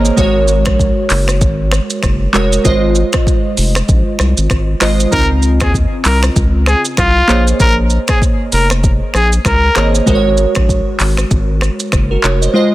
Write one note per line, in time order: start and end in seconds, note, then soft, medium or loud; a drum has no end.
0.00 0.11 G#1 loud
0.00 0.20 A#3 medium
0.00 0.20 G#4 medium
0.00 0.19 C5 medium
0.00 0.19 C#5 medium
0.00 0.20 D#5 medium
0.05 shaker medium
0.16 0.68 G#1 loud
0.16 0.98 G#3 loud
0.16 0.99 F#4 medium
0.16 0.99 A#4 medium
0.16 0.99 C#5 loud
0.16 kick loud
0.16 shaker medium
0.48 shaker medium
0.65 0.91 A#1 medium
0.65 finger snap loud
0.65 kick loud
0.65 cross-stick loud
0.65 shaker medium
0.79 kick medium
0.79 shaker medium
1.10 1.43 F#1 loud
1.10 clap medium
1.10 open hi-hat medium
1.10 shaker medium
1.28 finger snap medium
1.28 cross-stick loud
1.28 shaker medium
1.41 1.80 G#1 loud
1.41 kick loud
1.41 shaker medium
1.72 finger snap medium
1.72 cross-stick medium
1.72 shaker medium
1.90 shaker medium
2.03 2.28 F#1 loud
2.03 finger snap medium
2.03 kick medium
2.03 cross-stick loud
2.03 shaker medium
2.33 2.59 F1 medium
2.33 2.55 G#3 medium
2.33 2.56 F#4 medium
2.33 2.56 A#4 medium
2.33 2.56 C#5 loud
2.33 clap loud
2.33 shaker medium
2.53 shaker medium
2.64 3.04 G#1 loud
2.64 3.46 G#3 medium
2.64 3.46 F4 medium
2.64 3.46 C5 medium
2.64 3.47 D#5 loud
2.64 kick loud
2.64 shaker medium
2.95 shaker medium
3.13 finger snap loud
3.13 kick medium
3.13 cross-stick loud
3.13 shaker medium
3.27 kick medium
3.27 shaker medium
3.57 3.82 F1 medium
3.57 open hi-hat medium
3.57 shaker medium
3.75 finger snap medium
3.75 cross-stick loud
3.75 shaker medium
3.89 4.03 A#1 medium
3.89 kick loud
3.89 shaker medium
4.19 4.34 C2 loud
4.19 finger snap medium
4.19 cross-stick medium
4.19 shaker medium
4.37 4.48 G#1 medium
4.37 shaker medium
4.50 4.75 G#1 medium
4.50 finger snap medium
4.50 kick medium
4.50 cross-stick loud
4.50 shaker medium
4.80 5.06 G#1 loud
4.80 5.02 G#3 medium
4.80 5.03 F4 medium
4.80 5.03 C5 medium
4.80 5.04 D#5 loud
4.80 finger snap medium
4.80 cross-stick loud
4.80 clap loud
4.80 open hi-hat medium
4.80 shaker medium
5.00 shaker medium
5.11 5.63 C#2 loud
5.11 5.93 C#3 medium
5.11 5.93 C4 medium
5.11 5.20 D#4 medium
5.11 5.28 A#4 loud
5.11 5.94 D#5 medium
5.11 kick loud
5.11 shaker medium
5.19 5.97 F4 medium
5.42 shaker medium
5.60 5.86 D#2 medium
5.60 5.73 G#4 medium
5.60 finger snap loud
5.60 kick medium
5.60 cross-stick loud
5.60 shaker medium
5.74 kick medium
5.74 shaker medium
6.05 6.30 C2 loud
6.05 6.21 A#4 medium
6.05 clap medium
6.05 open hi-hat medium
6.05 shaker medium
6.23 finger snap medium
6.23 cross-stick loud
6.23 shaker medium
6.36 6.75 C#2 loud
6.36 kick loud
6.36 shaker medium
6.66 6.83 G#4 medium
6.66 finger snap medium
6.66 cross-stick medium
6.66 shaker medium
6.85 shaker medium
6.97 7.22 C2 medium
6.97 7.44 F4 loud
6.97 finger snap medium
6.97 kick medium
6.97 cross-stick loud
6.97 shaker medium
7.28 7.53 A#1 medium
7.28 8.28 A#3 medium
7.28 8.29 G#4 medium
7.28 8.29 C5 medium
7.28 8.29 C#5 medium
7.28 8.30 D#5 medium
7.28 clap loud
7.28 shaker medium
7.47 shaker medium
7.60 7.99 A#1 loud
7.60 7.76 A#4 loud
7.60 kick loud
7.60 shaker medium
7.90 shaker medium
8.08 8.20 G#4 medium
8.08 finger snap loud
8.08 kick loud
8.08 cross-stick loud
8.08 shaker medium
8.22 kick medium
8.22 shaker medium
8.52 9.02 F1 loud
8.52 8.68 A#4 medium
8.52 open hi-hat medium
8.52 shaker medium
8.70 finger snap medium
8.70 cross-stick loud
8.70 shaker medium
8.84 kick loud
8.84 shaker medium
9.14 9.39 A#1 loud
9.14 9.30 G#4 medium
9.14 finger snap medium
9.14 cross-stick medium
9.14 shaker medium
9.32 shaker medium
9.45 9.70 C#2 loud
9.45 9.92 A#4 medium
9.45 finger snap medium
9.45 kick medium
9.45 cross-stick loud
9.45 shaker medium
9.75 10.01 G#1 loud
9.75 9.97 A#3 medium
9.75 9.98 G#4 medium
9.75 9.98 C5 medium
9.75 9.98 C#5 medium
9.75 9.99 D#5 medium
9.75 finger snap medium
9.75 cross-stick loud
9.75 clap loud
9.75 shaker medium
9.95 shaker medium
10.06 10.46 G#1 loud
10.06 10.88 G#3 loud
10.06 10.88 F#4 medium
10.06 10.89 A#4 medium
10.06 10.16 C5 medium
10.06 kick loud
10.06 shaker medium
10.15 10.92 C#5 loud
10.37 shaker medium
10.55 10.81 A#1 medium
10.55 finger snap loud
10.55 kick loud
10.55 cross-stick loud
10.55 shaker medium
10.69 kick medium
10.69 shaker medium
11.00 11.25 G#1 medium
11.00 clap medium
11.00 open hi-hat medium
11.00 shaker medium
11.17 finger snap medium
11.17 cross-stick loud
11.17 shaker medium
11.31 11.70 G#1 loud
11.31 kick loud
11.31 shaker medium
11.61 finger snap medium
11.61 cross-stick medium
11.61 shaker medium
11.80 shaker medium
11.92 12.17 F#1 loud
11.92 finger snap medium
11.92 kick medium
11.92 cross-stick loud
11.92 shaker medium
12.11 12.24 F#4 medium
12.11 12.23 A#4 medium
12.24 12.48 F1 loud
12.24 12.41 A#4 medium
12.24 12.41 C#5 medium
12.24 clap loud
12.24 shaker medium
12.42 12.54 C5 medium
12.42 12.55 D#5 medium
12.42 shaker medium
12.53 12.75 G#3 medium
12.53 12.75 F4 medium
12.53 12.75 C5 medium
12.53 12.75 D#5 loud